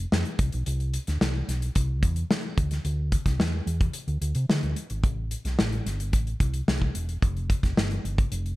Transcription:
0.12 fingered electric bass F2, snare
0.25 closed hi-hat
0.39 fingered electric bass C2, kick, closed hi-hat
0.52 fingered electric bass B1, closed hi-hat
0.66 fingered electric bass C2, closed hi-hat
0.80 closed hi-hat
0.94 closed hi-hat
1.07 fingered electric bass D2, snare, closed hi-hat
1.21 fingered electric bass C2, snare
1.48 fingered electric bass B1, snare, closed hi-hat
1.62 closed hi-hat
1.75 fingered electric bass C2, kick, closed hi-hat
2.03 fingered electric bass E2, kick, closed hi-hat
2.16 closed hi-hat
2.31 snare
2.58 fingered electric bass D2, kick, closed hi-hat
2.71 snare, closed hi-hat
2.85 fingered electric bass D2, closed hi-hat
3.12 kick, closed hi-hat
3.26 fingered electric bass C2, kick, snare, closed hi-hat
3.39 fingered electric bass E2, snare
3.66 fingered electric bass E2, closed hi-hat
3.81 kick, closed hi-hat
3.93 closed hi-hat
4.08 fingered electric bass D2, closed hi-hat
4.21 fingered electric bass D2, closed hi-hat
4.35 fingered electric bass C3, closed hi-hat
4.49 fingered electric bass D3, snare
4.63 fingered electric bass D2, closed hi-hat
4.76 closed hi-hat
4.90 fingered electric bass G#1, closed hi-hat
5.04 fingered electric bass A1, kick, closed hi-hat
5.31 closed hi-hat
5.45 fingered electric bass B1, snare, closed hi-hat
5.59 fingered electric bass A1, snare
5.72 closed hi-hat
5.86 fingered electric bass G1, snare, closed hi-hat
6.00 closed hi-hat
6.13 fingered electric bass A1, kick, closed hi-hat
6.27 closed hi-hat
6.40 fingered electric bass C2, kick, closed hi-hat
6.54 closed hi-hat
6.68 fingered electric bass C2, snare
6.82 kick
6.95 fingered electric bass E1, closed hi-hat
7.09 closed hi-hat
7.22 fingered electric bass F1, kick, closed hi-hat
7.37 closed hi-hat
7.50 kick, closed hi-hat
7.63 fingered electric bass E1, kick, snare, closed hi-hat
7.77 fingered electric bass G1, snare
7.91 closed hi-hat
8.04 fingered electric bass G1, closed hi-hat
8.18 kick, closed hi-hat
8.32 fingered electric bass F1, closed hi-hat
8.46 closed hi-hat

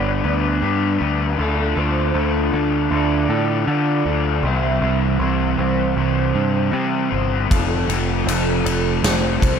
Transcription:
Already playing: picked electric bass G1, overdriven electric guitar G3 B3 D4 B4, clean electric guitar G3 B3 D4 A4, soft synth lead D5
0.23 picked electric bass D2, overdriven electric guitar B3 D4 B4
0.61 picked electric bass G2, overdriven electric guitar G3 B3 D4 B4
0.99 picked electric bass D2, overdriven electric guitar B3 D4 B4
1.37 picked electric bass D2, overdriven electric guitar D3 D4 F4 A4, soft synth lead A4
1.75 picked electric bass D2, overdriven electric guitar D4 F4 A4, soft synth lead C5
2.13 picked electric bass D2, overdriven electric guitar D3 D4 F4 A4
2.52 picked electric bass D2, overdriven electric guitar D4 F4 A4
2.90 picked electric bass D2, overdriven electric guitar D3 D4 F4 A4
2.95 soft synth lead D5
3.29 picked electric bass A2, overdriven electric guitar D4 F4 A4
3.67 overdriven electric guitar D3 D4 F4 A4, picked electric bass D3, soft synth lead D5
4.05 picked electric bass D2, overdriven electric guitar F4 A4
4.10 overdriven electric guitar D4
4.43 picked electric bass C2, overdriven electric guitar C3 E3 G3 C4, soft synth lead E5
4.47 overdriven electric guitar E4 C5
4.81 picked electric bass C2, overdriven electric guitar C4 E4 C5
4.85 overdriven electric guitar G3
5.19 picked electric bass C2, overdriven electric guitar G3 C4 E4 C5
5.58 picked electric bass C2, overdriven electric guitar G3 C4 E4 C5, soft synth lead C5
5.96 picked electric bass C2, overdriven electric guitar C3 E3 G3 C4 E4 C5, soft synth lead C5
6.34 picked electric bass G2, overdriven electric guitar G3 C4 E4 C5
6.72 picked electric bass C3, overdriven electric guitar G3 C4 E4 C5
7.10 picked electric bass G1, overdriven electric guitar G3 C4 E4 C5
7.48 picked electric bass F1, overdriven electric guitar F3 A3 C4 F4 A4, soft synth lead A4, kick, ride
7.87 picked electric bass F1, overdriven electric guitar C4 F4 A4, ride
8.26 picked electric bass F1, overdriven electric guitar A3 C4 F4 A4, soft synth lead A4, ride
8.64 picked electric bass F1, overdriven electric guitar C4 F4 A4, ride
9.01 picked electric bass F1, overdriven electric guitar F3 A3 C4 F4 A4, soft synth lead C5, snare, ride
9.40 picked electric bass C2, overdriven electric guitar C4 F4 A4, kick, ride

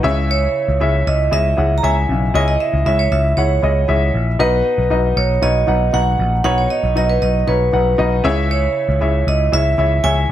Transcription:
0.03 picked electric bass C#2, upright piano C#3 E4 G#4 C#5 E5
0.31 vibraphone C#5
0.69 picked electric bass C#2
0.80 picked electric bass C#2, upright piano E4 G#4 C#5 E5
1.07 picked electric bass C#2, vibraphone D#5
1.31 picked electric bass C#2, upright piano E4 G#4 C#5 D#5, vibraphone E5
1.57 picked electric bass C#2, upright piano E4 G#4 C#5 F#5
1.78 vibraphone A#5
1.83 picked electric bass C#2, upright piano E4 G#4 C#5 E5, vibraphone G#5
2.09 picked electric bass B1, upright piano C#3
2.34 picked electric bass C#2, upright piano E4 G#4 C#5 D#5, vibraphone G#5
2.48 vibraphone D#5
2.60 vibraphone E5
2.74 picked electric bass C#2
2.86 picked electric bass C#2, upright piano E4 G#4 C#5 E5, vibraphone E5
2.99 vibraphone C#5
3.12 picked electric bass C#2, vibraphone E5
3.37 picked electric bass C#2, upright piano E4 G#4 C#5 F#5, vibraphone C#5
3.62 picked electric bass C#2, upright piano E4 G#4 C#5 D#5
3.88 picked electric bass C#2, upright piano E4 G#4 C#5 E5
4.14 picked electric bass A#1
4.39 picked electric bass B1, upright piano B2 D#4 F#4 B4 D#5, vibraphone B4
4.78 picked electric bass B1
4.90 picked electric bass B1, upright piano D#4 F#4 B4 D#5
5.17 picked electric bass B1, vibraphone C#5
5.42 picked electric bass B1, upright piano D#4 F#4 B4 C#5, vibraphone D#5
5.67 picked electric bass B1, upright piano D#4 F#4 B4 F#5
5.93 picked electric bass B1, upright piano D#4 F#4 B4 F#5, vibraphone F#5
6.19 picked electric bass A#1
6.44 picked electric bass B1, upright piano B2 D#4 F#4 B4 C#5, vibraphone F#5
6.58 vibraphone C#5
6.70 vibraphone D#5
6.83 picked electric bass B1
6.96 picked electric bass B1, upright piano D#4 F#4 B4 D#5, vibraphone D#5
7.10 vibraphone B4
7.22 picked electric bass B1, vibraphone D#5
7.47 picked electric bass B1, upright piano D#4 F#4 B4 C#5, vibraphone B4
7.73 picked electric bass B1, upright piano D#4 F#4 B4 F#5
7.98 picked electric bass B1, upright piano D#4 F#4 B4 D#5
8.24 picked electric bass C#2, upright piano C#3 E4 G#4 C#5 E5
8.51 vibraphone C#5
8.89 picked electric bass C#2
9.01 picked electric bass C#2, upright piano E4 G#4 C#5 E5
9.27 picked electric bass C#2, vibraphone D#5
9.52 picked electric bass C#2, upright piano E4 G#4 C#5 E5, vibraphone E5
9.78 picked electric bass C#2, upright piano E4 G#4 C#5 E5
10.03 picked electric bass C#2, upright piano E4 G#4 C#5 E5, vibraphone G#5

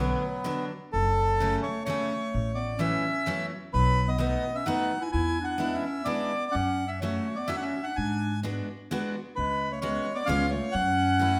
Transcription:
Already playing: upright bass B1, steel-string acoustic guitar D3 F#3, clarinet F#3, bandoneon B3
0.00 steel-string acoustic guitar B3 D4
0.44 steel-string acoustic guitar D3 F#3 B3 D4
0.93 upright bass F#1, clarinet F#3, bandoneon A4
1.40 steel-string acoustic guitar C#3 F#3 A3 C#4
1.63 clarinet A3, bandoneon C#5
1.83 steel-string acoustic guitar C#3 F#3, clarinet A3, bandoneon C#5
1.88 steel-string acoustic guitar A3 C#4
2.34 upright bass A1
2.54 clarinet B3, bandoneon D5
2.77 steel-string acoustic guitar E3 F#3 A3, clarinet C#4, bandoneon E5
2.81 steel-string acoustic guitar C#4
3.26 steel-string acoustic guitar E3 F#3 A3 C#4
3.72 upright bass B1, clarinet F#3, bandoneon B4
4.07 clarinet B3, bandoneon D#5
4.18 steel-string acoustic guitar F#3 A3 B3 D#4, clarinet B3, bandoneon D#5
4.55 clarinet C#4, bandoneon E5
4.66 steel-string acoustic guitar F#3 A3 B3 D#4, clarinet D#4, bandoneon F#5
5.01 clarinet E4, bandoneon G#5
5.11 upright bass E2, clarinet E4, bandoneon G#5
5.40 clarinet D4, bandoneon F#5
5.58 steel-string acoustic guitar G#3 B3 D4 E4
5.72 clarinet C#4, bandoneon E5
6.04 steel-string acoustic guitar G#3 B3 D4 E4, clarinet B3, bandoneon D5
6.51 upright bass F#2, clarinet C#4, bandoneon F#5
6.87 clarinet C#4, bandoneon E5
7.00 steel-string acoustic guitar F#3 A3 C#4 F#4, clarinet A3, bandoneon C#5
7.35 clarinet B3, bandoneon D5
7.48 steel-string acoustic guitar F#3 A3 C#4 F#4, clarinet C#4, bandoneon E5
7.56 clarinet D4, bandoneon F#5
7.61 clarinet C#4, bandoneon E5
7.82 clarinet D4, bandoneon F#5
7.94 upright bass G#2, clarinet D4, bandoneon G#5
8.43 steel-string acoustic guitar G#3 B3 D4 F#4
8.91 steel-string acoustic guitar G#3 B3 D4 F#4
9.36 upright bass C#2, clarinet G#3, bandoneon B4
9.71 clarinet A3, bandoneon C#5
9.81 clarinet G#3, steel-string acoustic guitar G#3 B3 C#4 F#4, bandoneon C#5
10.15 clarinet B3, bandoneon D5
10.25 steel-string acoustic guitar G#3, clarinet C#4, bandoneon F5
10.29 upright bass C#2, steel-string acoustic guitar B3 C#4 F4
10.49 clarinet A3, bandoneon C#5
10.72 upright bass F#2, clarinet C#4, bandoneon F#5
11.19 steel-string acoustic guitar F#3 A3 C#4 E4

